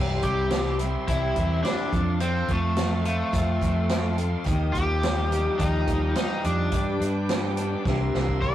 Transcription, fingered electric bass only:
0, 0, Header, 1, 2, 480
1, 0, Start_track
1, 0, Tempo, 564440
1, 1883, Time_signature, 4, 2, 24, 8
1, 7270, End_track
2, 0, Start_track
2, 0, Title_t, "Fingered electric bass"
2, 0, Program_c, 0, 33
2, 0, Note_on_c, 0, 36, 81
2, 165, Note_off_c, 0, 36, 0
2, 199, Note_on_c, 0, 36, 84
2, 809, Note_off_c, 0, 36, 0
2, 921, Note_on_c, 0, 36, 87
2, 1124, Note_off_c, 0, 36, 0
2, 1166, Note_on_c, 0, 40, 80
2, 1367, Note_off_c, 0, 40, 0
2, 1643, Note_on_c, 0, 41, 85
2, 2049, Note_off_c, 0, 41, 0
2, 2115, Note_on_c, 0, 41, 91
2, 2727, Note_off_c, 0, 41, 0
2, 2833, Note_on_c, 0, 41, 86
2, 3040, Note_off_c, 0, 41, 0
2, 3077, Note_on_c, 0, 41, 87
2, 3688, Note_off_c, 0, 41, 0
2, 3802, Note_on_c, 0, 39, 91
2, 4006, Note_off_c, 0, 39, 0
2, 4036, Note_on_c, 0, 39, 86
2, 4648, Note_off_c, 0, 39, 0
2, 4756, Note_on_c, 0, 39, 88
2, 4963, Note_off_c, 0, 39, 0
2, 5000, Note_on_c, 0, 39, 85
2, 5205, Note_off_c, 0, 39, 0
2, 5480, Note_on_c, 0, 41, 90
2, 5685, Note_off_c, 0, 41, 0
2, 5720, Note_on_c, 0, 43, 97
2, 5925, Note_off_c, 0, 43, 0
2, 5956, Note_on_c, 0, 43, 94
2, 6567, Note_off_c, 0, 43, 0
2, 6680, Note_on_c, 0, 36, 83
2, 6885, Note_off_c, 0, 36, 0
2, 6930, Note_on_c, 0, 36, 81
2, 7270, Note_off_c, 0, 36, 0
2, 7270, End_track
0, 0, End_of_file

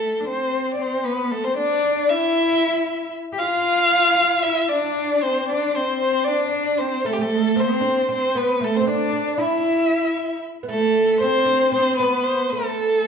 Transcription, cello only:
0, 0, Header, 1, 2, 480
1, 0, Start_track
1, 0, Tempo, 521286
1, 1451, Time_signature, 7, 3, 24, 8
1, 12035, End_track
2, 0, Start_track
2, 0, Title_t, "Cello"
2, 0, Program_c, 0, 42
2, 0, Note_on_c, 0, 57, 67
2, 185, Note_on_c, 0, 62, 52
2, 199, Note_off_c, 0, 57, 0
2, 242, Note_on_c, 0, 60, 81
2, 256, Note_off_c, 0, 62, 0
2, 712, Note_off_c, 0, 60, 0
2, 718, Note_on_c, 0, 60, 76
2, 961, Note_on_c, 0, 59, 83
2, 975, Note_off_c, 0, 60, 0
2, 1203, Note_on_c, 0, 57, 74
2, 1217, Note_off_c, 0, 59, 0
2, 1326, Note_on_c, 0, 60, 73
2, 1340, Note_off_c, 0, 57, 0
2, 1449, Note_off_c, 0, 60, 0
2, 1453, Note_on_c, 0, 62, 82
2, 1931, Note_on_c, 0, 64, 96
2, 1944, Note_off_c, 0, 62, 0
2, 2891, Note_off_c, 0, 64, 0
2, 3061, Note_on_c, 0, 67, 73
2, 3120, Note_on_c, 0, 65, 99
2, 3134, Note_off_c, 0, 67, 0
2, 4084, Note_on_c, 0, 64, 90
2, 4098, Note_off_c, 0, 65, 0
2, 4327, Note_off_c, 0, 64, 0
2, 4340, Note_on_c, 0, 62, 90
2, 4812, Note_on_c, 0, 60, 80
2, 4825, Note_off_c, 0, 62, 0
2, 5060, Note_on_c, 0, 62, 80
2, 5074, Note_off_c, 0, 60, 0
2, 5304, Note_on_c, 0, 60, 82
2, 5317, Note_off_c, 0, 62, 0
2, 5781, Note_on_c, 0, 62, 86
2, 5795, Note_off_c, 0, 60, 0
2, 6261, Note_on_c, 0, 60, 79
2, 6275, Note_off_c, 0, 62, 0
2, 6496, Note_off_c, 0, 60, 0
2, 6507, Note_on_c, 0, 57, 73
2, 6619, Note_off_c, 0, 57, 0
2, 6631, Note_on_c, 0, 57, 75
2, 6973, Note_on_c, 0, 60, 84
2, 6987, Note_off_c, 0, 57, 0
2, 7453, Note_off_c, 0, 60, 0
2, 7473, Note_on_c, 0, 60, 71
2, 7698, Note_on_c, 0, 59, 78
2, 7712, Note_off_c, 0, 60, 0
2, 7939, Note_on_c, 0, 57, 71
2, 7953, Note_off_c, 0, 59, 0
2, 8057, Note_on_c, 0, 60, 72
2, 8071, Note_off_c, 0, 57, 0
2, 8176, Note_on_c, 0, 62, 84
2, 8190, Note_off_c, 0, 60, 0
2, 8651, Note_on_c, 0, 64, 81
2, 8665, Note_off_c, 0, 62, 0
2, 9613, Note_off_c, 0, 64, 0
2, 9847, Note_on_c, 0, 57, 82
2, 10339, Note_on_c, 0, 60, 95
2, 10353, Note_off_c, 0, 57, 0
2, 10817, Note_off_c, 0, 60, 0
2, 10824, Note_on_c, 0, 60, 86
2, 11065, Note_on_c, 0, 59, 96
2, 11079, Note_off_c, 0, 60, 0
2, 11532, Note_off_c, 0, 59, 0
2, 11538, Note_on_c, 0, 57, 80
2, 12035, Note_off_c, 0, 57, 0
2, 12035, End_track
0, 0, End_of_file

